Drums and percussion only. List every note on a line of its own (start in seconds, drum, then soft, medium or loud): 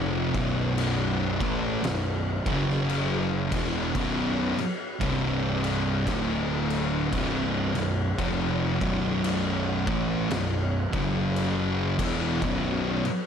0.35 kick loud
0.35 crash medium
0.78 crash medium
1.40 kick loud
1.40 crash medium
1.84 snare loud
1.84 crash medium
2.46 kick loud
2.46 crash medium
2.70 snare soft
2.89 crash medium
3.52 kick loud
3.52 crash loud
3.95 kick loud
3.95 crash medium
4.58 crash medium
5.01 kick loud
5.01 crash medium
5.64 crash medium
6.07 kick loud
6.07 snare loud
6.07 crash medium
6.70 crash medium
7.13 kick medium
7.13 crash medium
7.75 crash medium
8.19 kick loud
8.19 crash medium
8.81 kick loud
8.81 crash medium
9.24 crash medium
9.87 kick loud
9.87 crash medium
10.31 snare loud
10.31 crash medium
10.93 kick loud
10.93 crash medium
11.36 crash medium
11.99 kick loud
11.99 crash loud
12.42 kick loud
12.42 crash medium
13.05 crash medium